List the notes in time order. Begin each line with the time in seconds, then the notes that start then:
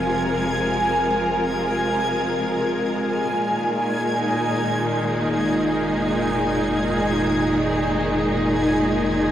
Already playing: F1 C3 F3 G#3 F4 A#4 G#5 G#6
3.27 F1
3.32 A#2
3.45 D#3
4.09 D#4
5.04 G#4